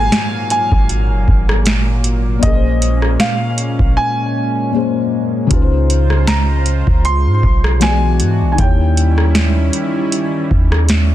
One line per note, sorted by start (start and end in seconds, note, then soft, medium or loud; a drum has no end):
0.00 1.99 G#2 medium
0.00 5.47 A#2 medium
0.00 2.00 D#3 medium
0.00 2.40 F#3 medium
0.00 2.00 A#3 medium
0.00 5.47 A#3 medium
0.00 2.01 F4 medium
0.00 2.02 F#4 medium
0.00 2.06 C5 medium
0.00 2.40 F5 medium
0.00 0.49 G#5 loud
0.12 snare loud
0.12 closed hi-hat medium
0.50 2.01 G#5 loud
0.50 closed hi-hat medium
0.72 1.12 G#1 loud
0.72 kick medium
0.89 closed hi-hat medium
1.11 1.27 F#1 loud
1.28 2.39 G#1 loud
1.28 kick medium
1.49 cross-stick loud
1.66 snare loud
1.66 closed hi-hat medium
2.04 closed hi-hat medium
2.39 4.68 A#2 medium
2.39 4.69 A#3 medium
2.39 3.16 D#5 medium
2.43 3.17 A#1 loud
2.43 8.55 G#3 medium
2.43 4.70 C#4 medium
2.43 5.48 C#4 medium
2.43 4.71 G#4 medium
2.43 kick loud
2.43 closed hi-hat medium
2.47 2.52 A#4 medium
2.54 4.75 C5 medium
2.82 closed hi-hat medium
3.02 cross-stick medium
3.20 3.99 F5 loud
3.20 snare loud
3.20 closed hi-hat medium
3.58 closed hi-hat medium
3.79 3.96 A#1 medium
3.79 kick medium
3.97 4.70 G#5 loud
4.72 5.50 A#2 medium
4.72 5.50 A#3 soft
4.72 5.47 C#4 soft
4.72 5.52 G#4 soft
4.76 5.52 C5 medium
5.47 7.76 C#3 medium
5.47 7.79 C#3 medium
5.47 7.77 C#4 medium
5.47 7.79 F4 medium
5.47 closed hi-hat medium
5.51 6.83 C#2 loud
5.51 7.78 D#4 medium
5.51 7.79 F4 medium
5.51 7.79 C5 medium
5.51 kick loud
5.55 5.60 B4 medium
5.62 7.83 C5 medium
5.90 closed hi-hat medium
6.10 cross-stick medium
6.27 7.07 A#5 loud
6.27 snare loud
6.27 closed hi-hat medium
6.66 closed hi-hat medium
6.87 7.27 C#2 loud
6.87 kick medium
7.05 7.78 C6 loud
7.05 closed hi-hat medium
7.26 7.43 G#2 loud
7.43 8.22 B1 loud
7.43 kick medium
7.64 cross-stick loud
7.80 8.58 E3 medium
7.80 8.57 E3 medium
7.80 8.58 B3 medium
7.80 8.58 D4 medium
7.80 8.58 F#4 medium
7.80 8.59 F#4 medium
7.80 7.89 G4 medium
7.80 8.51 G#5 loud
7.80 snare loud
7.80 closed hi-hat medium
7.84 8.60 D5 medium
7.89 8.62 G#4 medium
8.20 8.43 G#2 loud
8.20 closed hi-hat medium
8.42 8.58 B1 loud
8.52 11.15 D#3 medium
8.52 8.59 G#5 medium
8.57 9.70 D#2 loud
8.57 11.15 D#3 medium
8.57 11.15 G3 medium
8.57 11.15 A#3 medium
8.57 11.15 C#4 medium
8.57 11.15 E4 loud
8.57 11.15 E4 medium
8.57 10.86 G5 medium
8.57 kick loud
8.57 closed hi-hat medium
8.61 11.15 G4 medium
8.61 11.15 C#5 medium
8.97 closed hi-hat medium
9.18 cross-stick medium
9.35 snare loud
9.35 closed hi-hat medium
9.73 closed hi-hat medium
10.12 closed hi-hat medium
10.51 11.15 D#2 loud
10.51 kick medium
10.72 cross-stick loud
10.89 snare loud
10.89 closed hi-hat medium